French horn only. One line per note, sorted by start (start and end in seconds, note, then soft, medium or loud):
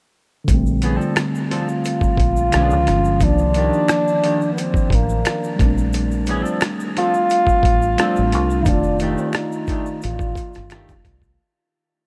1.52 3.25 F4 loud
3.23 4.52 D4 loud
4.53 4.62 B3 medium
4.60 4.96 C4 medium
4.94 5.61 A#3 medium
6.98 8.69 F4 loud
8.67 9.02 D4 loud
9.01 9.12 D#4 medium
9.10 9.22 D4 medium
9.20 9.30 C4 medium
9.29 9.37 D4 medium
9.36 10.03 D#4 medium
10.04 11.02 F4 medium